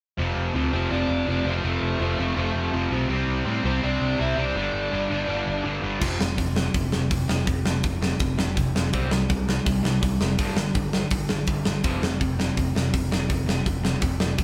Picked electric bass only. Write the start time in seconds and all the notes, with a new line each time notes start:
0.18 F1
0.36 F1
0.55 D2
0.73 F1
0.91 F1
1.09 F1
1.27 F1
1.45 F1
1.63 F1
1.81 F1
2.00 F1
2.18 F1
2.37 F1
2.54 F1
2.73 F1
2.91 B1
3.09 C2
3.27 C2
3.45 A2
3.64 C2
3.83 C2
4.00 C2
4.20 C2
4.38 C2
4.55 G1
4.74 G1
4.93 G1
5.11 G1
5.29 G1
5.47 G1
5.65 G1
5.84 G1
6.02 F1
6.20 F1
6.38 F1
6.74 F1
6.93 F1
7.10 F1
7.29 F1
7.47 F1
7.65 F1
7.83 F1
8.20 F1
8.38 F1
8.57 F1
8.74 F1
8.93 C2
9.11 C2
9.30 C2
9.66 C2
9.84 C2
10.03 C2
10.19 F1
10.39 G1
10.56 G1
10.75 G1
11.11 G1
11.30 G1
11.47 G1
11.66 G1
11.84 F1
12.02 F1
12.21 F1
12.57 F1
12.74 F1
12.94 F1
13.10 F1
13.30 F1
13.46 F1
13.66 F1
14.02 F1
14.19 F1
14.39 F1